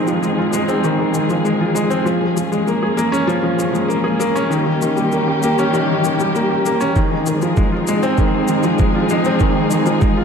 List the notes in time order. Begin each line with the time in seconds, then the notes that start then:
Already playing: F1 D#3 F3 G#3 C4 D#4 F4 G#4
0.07 F3, shaker
0.23 G#3, shaker
0.38 F4
0.53 G#3, shaker
0.68 C4, shaker
0.84 D#3, shaker
0.99 D#3
1.14 D#3, shaker
1.30 F3, shaker
1.45 G#3, shaker
1.60 F4
1.75 G#3, shaker
1.90 C4, shaker
2.05 A#1 F3 A#3 C#4, shaker
2.22 F3
2.37 F3, shaker
2.52 G#3, shaker
2.67 A#3, shaker
2.83 G#4
2.97 A#3, shaker
3.12 C#4, shaker
3.27 F3, shaker
3.43 F3
3.58 F3, shaker
3.73 G#3, shaker
3.88 A#3, shaker
4.04 G#4
4.20 A#3, shaker
4.36 C#4, shaker
4.50 D#1 D#3 G3 G4, shaker
4.66 D#3
4.82 D#3, shaker
4.96 G3, shaker
5.12 A#3, shaker
5.28 G4
5.43 A#3, shaker
5.59 C#4, shaker
5.73 D#3, shaker
5.90 D#3
6.04 D#3, shaker
6.20 G3, shaker
6.35 A#3, shaker
6.51 G4
6.66 A#3, shaker
6.80 C#4, shaker
6.96 D#3 F3 G#3 C4 D#4 G#4, kick, shaker
7.11 D#3
7.26 D#3, shaker
7.42 F3, shaker
7.57 G#3, kick, shaker
7.72 F4
7.87 G#3, shaker
8.03 C4, shaker
8.18 D#3, kick, shaker
8.34 D#3
8.48 D#3, shaker
8.63 F3, shaker
8.79 G#3, kick, shaker
8.95 F4
9.09 G#3, shaker
9.25 C4, shaker
9.40 D#3, kick, shaker
9.56 D#3
9.71 D#3, shaker
9.86 F3, shaker
10.01 G#3, kick, shaker
10.17 F4